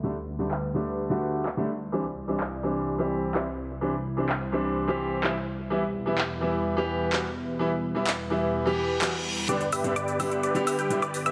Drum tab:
HH |----------------|----------------|----------------|----------------|
SH |----------------|----------------|----------------|----------------|
CP |----x-------x---|----x-------x---|----x-------x---|----x-------x---|

HH |----------------|xxoxxxoxxxoxxxox|
SH |----------------|xxxxxxxxxxxxxxxx|
CP |----x-------x---|----------------|